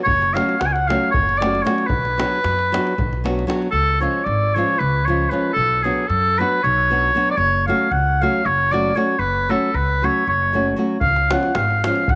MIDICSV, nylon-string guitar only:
0, 0, Header, 1, 2, 480
1, 0, Start_track
1, 0, Tempo, 521286
1, 55, Time_signature, 7, 3, 24, 8
1, 11190, End_track
2, 0, Start_track
2, 0, Title_t, "Nylon-string guitar"
2, 0, Program_c, 0, 24
2, 312, Note_on_c, 0, 54, 67
2, 321, Note_on_c, 0, 57, 59
2, 324, Note_on_c, 0, 61, 60
2, 326, Note_on_c, 0, 66, 71
2, 500, Note_off_c, 0, 54, 0
2, 505, Note_off_c, 0, 57, 0
2, 505, Note_off_c, 0, 61, 0
2, 507, Note_off_c, 0, 66, 0
2, 816, Note_on_c, 0, 54, 57
2, 824, Note_on_c, 0, 57, 58
2, 828, Note_on_c, 0, 61, 55
2, 832, Note_on_c, 0, 66, 72
2, 1003, Note_off_c, 0, 54, 0
2, 1007, Note_off_c, 0, 57, 0
2, 1009, Note_off_c, 0, 61, 0
2, 1011, Note_off_c, 0, 66, 0
2, 1293, Note_on_c, 0, 54, 58
2, 1299, Note_on_c, 0, 57, 67
2, 1305, Note_on_c, 0, 61, 60
2, 1312, Note_on_c, 0, 66, 65
2, 1474, Note_off_c, 0, 54, 0
2, 1477, Note_off_c, 0, 57, 0
2, 1480, Note_off_c, 0, 61, 0
2, 1483, Note_off_c, 0, 66, 0
2, 1515, Note_on_c, 0, 54, 61
2, 1522, Note_on_c, 0, 57, 58
2, 1524, Note_on_c, 0, 61, 67
2, 1531, Note_on_c, 0, 66, 80
2, 1693, Note_off_c, 0, 54, 0
2, 1695, Note_off_c, 0, 57, 0
2, 1697, Note_off_c, 0, 61, 0
2, 1701, Note_off_c, 0, 66, 0
2, 2004, Note_on_c, 0, 54, 59
2, 2008, Note_on_c, 0, 59, 50
2, 2013, Note_on_c, 0, 62, 58
2, 2019, Note_on_c, 0, 66, 71
2, 2190, Note_off_c, 0, 54, 0
2, 2191, Note_off_c, 0, 59, 0
2, 2194, Note_off_c, 0, 62, 0
2, 2198, Note_off_c, 0, 66, 0
2, 2506, Note_on_c, 0, 54, 79
2, 2511, Note_on_c, 0, 59, 66
2, 2517, Note_on_c, 0, 62, 60
2, 2526, Note_on_c, 0, 66, 78
2, 2691, Note_off_c, 0, 54, 0
2, 2695, Note_off_c, 0, 59, 0
2, 2695, Note_off_c, 0, 62, 0
2, 2701, Note_off_c, 0, 66, 0
2, 2983, Note_on_c, 0, 54, 70
2, 2989, Note_on_c, 0, 59, 65
2, 2993, Note_on_c, 0, 62, 77
2, 3002, Note_on_c, 0, 66, 84
2, 3161, Note_off_c, 0, 54, 0
2, 3165, Note_off_c, 0, 59, 0
2, 3167, Note_off_c, 0, 62, 0
2, 3171, Note_off_c, 0, 66, 0
2, 3195, Note_on_c, 0, 54, 83
2, 3196, Note_on_c, 0, 59, 55
2, 3203, Note_on_c, 0, 62, 68
2, 3207, Note_on_c, 0, 66, 92
2, 3376, Note_off_c, 0, 54, 0
2, 3376, Note_off_c, 0, 59, 0
2, 3380, Note_off_c, 0, 62, 0
2, 3381, Note_off_c, 0, 66, 0
2, 3687, Note_on_c, 0, 53, 64
2, 3695, Note_on_c, 0, 56, 58
2, 3698, Note_on_c, 0, 61, 60
2, 3706, Note_on_c, 0, 65, 73
2, 3874, Note_off_c, 0, 53, 0
2, 3878, Note_off_c, 0, 56, 0
2, 3879, Note_off_c, 0, 61, 0
2, 3883, Note_off_c, 0, 65, 0
2, 4196, Note_on_c, 0, 53, 66
2, 4202, Note_on_c, 0, 56, 62
2, 4210, Note_on_c, 0, 61, 56
2, 4216, Note_on_c, 0, 65, 72
2, 4378, Note_off_c, 0, 53, 0
2, 4381, Note_off_c, 0, 56, 0
2, 4385, Note_off_c, 0, 61, 0
2, 4388, Note_off_c, 0, 65, 0
2, 4674, Note_on_c, 0, 53, 71
2, 4682, Note_on_c, 0, 56, 56
2, 4688, Note_on_c, 0, 61, 52
2, 4690, Note_on_c, 0, 65, 69
2, 4849, Note_off_c, 0, 53, 0
2, 4853, Note_off_c, 0, 56, 0
2, 4854, Note_off_c, 0, 61, 0
2, 4856, Note_off_c, 0, 65, 0
2, 4889, Note_on_c, 0, 53, 65
2, 4895, Note_on_c, 0, 56, 61
2, 4899, Note_on_c, 0, 61, 58
2, 4908, Note_on_c, 0, 65, 68
2, 5064, Note_off_c, 0, 53, 0
2, 5067, Note_off_c, 0, 56, 0
2, 5069, Note_off_c, 0, 61, 0
2, 5073, Note_off_c, 0, 65, 0
2, 5378, Note_on_c, 0, 54, 64
2, 5386, Note_on_c, 0, 59, 66
2, 5391, Note_on_c, 0, 62, 55
2, 5397, Note_on_c, 0, 66, 72
2, 5560, Note_off_c, 0, 54, 0
2, 5564, Note_off_c, 0, 59, 0
2, 5565, Note_off_c, 0, 62, 0
2, 5570, Note_off_c, 0, 66, 0
2, 5884, Note_on_c, 0, 54, 57
2, 5894, Note_on_c, 0, 59, 55
2, 5898, Note_on_c, 0, 62, 58
2, 5902, Note_on_c, 0, 66, 61
2, 6062, Note_off_c, 0, 54, 0
2, 6068, Note_off_c, 0, 59, 0
2, 6069, Note_off_c, 0, 62, 0
2, 6070, Note_off_c, 0, 66, 0
2, 6357, Note_on_c, 0, 54, 70
2, 6361, Note_on_c, 0, 59, 54
2, 6366, Note_on_c, 0, 62, 66
2, 6375, Note_on_c, 0, 66, 63
2, 6530, Note_off_c, 0, 54, 0
2, 6531, Note_off_c, 0, 59, 0
2, 6534, Note_off_c, 0, 62, 0
2, 6539, Note_off_c, 0, 66, 0
2, 6582, Note_on_c, 0, 54, 64
2, 6588, Note_on_c, 0, 59, 62
2, 6591, Note_on_c, 0, 62, 69
2, 6600, Note_on_c, 0, 66, 77
2, 6749, Note_off_c, 0, 54, 0
2, 6753, Note_off_c, 0, 59, 0
2, 6754, Note_off_c, 0, 62, 0
2, 6759, Note_off_c, 0, 66, 0
2, 7068, Note_on_c, 0, 54, 58
2, 7074, Note_on_c, 0, 57, 60
2, 7079, Note_on_c, 0, 61, 51
2, 7085, Note_on_c, 0, 66, 84
2, 7244, Note_off_c, 0, 54, 0
2, 7246, Note_off_c, 0, 57, 0
2, 7249, Note_off_c, 0, 61, 0
2, 7252, Note_off_c, 0, 66, 0
2, 7565, Note_on_c, 0, 54, 62
2, 7567, Note_on_c, 0, 57, 55
2, 7574, Note_on_c, 0, 61, 56
2, 7580, Note_on_c, 0, 66, 74
2, 7741, Note_off_c, 0, 57, 0
2, 7742, Note_off_c, 0, 54, 0
2, 7747, Note_off_c, 0, 61, 0
2, 7747, Note_off_c, 0, 66, 0
2, 8027, Note_on_c, 0, 54, 66
2, 8032, Note_on_c, 0, 57, 59
2, 8035, Note_on_c, 0, 61, 54
2, 8044, Note_on_c, 0, 66, 75
2, 8203, Note_off_c, 0, 54, 0
2, 8204, Note_off_c, 0, 57, 0
2, 8207, Note_off_c, 0, 61, 0
2, 8211, Note_off_c, 0, 66, 0
2, 8240, Note_on_c, 0, 54, 57
2, 8244, Note_on_c, 0, 57, 59
2, 8254, Note_on_c, 0, 61, 57
2, 8260, Note_on_c, 0, 66, 79
2, 8417, Note_off_c, 0, 54, 0
2, 8418, Note_off_c, 0, 57, 0
2, 8424, Note_off_c, 0, 61, 0
2, 8427, Note_off_c, 0, 66, 0
2, 8737, Note_on_c, 0, 54, 54
2, 8741, Note_on_c, 0, 57, 62
2, 8746, Note_on_c, 0, 61, 59
2, 8755, Note_on_c, 0, 66, 74
2, 8916, Note_off_c, 0, 54, 0
2, 8918, Note_off_c, 0, 57, 0
2, 8921, Note_off_c, 0, 61, 0
2, 8925, Note_off_c, 0, 66, 0
2, 9227, Note_on_c, 0, 54, 53
2, 9235, Note_on_c, 0, 57, 51
2, 9239, Note_on_c, 0, 61, 50
2, 9244, Note_on_c, 0, 66, 68
2, 9410, Note_off_c, 0, 54, 0
2, 9414, Note_off_c, 0, 57, 0
2, 9415, Note_off_c, 0, 61, 0
2, 9418, Note_off_c, 0, 66, 0
2, 9697, Note_on_c, 0, 54, 58
2, 9704, Note_on_c, 0, 57, 54
2, 9713, Note_on_c, 0, 61, 56
2, 9718, Note_on_c, 0, 66, 60
2, 9875, Note_off_c, 0, 54, 0
2, 9878, Note_off_c, 0, 57, 0
2, 9883, Note_off_c, 0, 61, 0
2, 9885, Note_off_c, 0, 66, 0
2, 9911, Note_on_c, 0, 54, 62
2, 9920, Note_on_c, 0, 57, 52
2, 9923, Note_on_c, 0, 61, 64
2, 9933, Note_on_c, 0, 66, 67
2, 10089, Note_off_c, 0, 54, 0
2, 10093, Note_off_c, 0, 57, 0
2, 10094, Note_off_c, 0, 61, 0
2, 10100, Note_off_c, 0, 66, 0
2, 10409, Note_on_c, 0, 53, 63
2, 10417, Note_on_c, 0, 56, 57
2, 10421, Note_on_c, 0, 61, 66
2, 10431, Note_on_c, 0, 65, 67
2, 10590, Note_off_c, 0, 53, 0
2, 10591, Note_off_c, 0, 56, 0
2, 10594, Note_off_c, 0, 61, 0
2, 10600, Note_off_c, 0, 65, 0
2, 10910, Note_on_c, 0, 53, 57
2, 10914, Note_on_c, 0, 56, 52
2, 10919, Note_on_c, 0, 61, 53
2, 10929, Note_on_c, 0, 65, 64
2, 11087, Note_off_c, 0, 53, 0
2, 11090, Note_off_c, 0, 56, 0
2, 11090, Note_off_c, 0, 61, 0
2, 11096, Note_off_c, 0, 65, 0
2, 11190, End_track
0, 0, End_of_file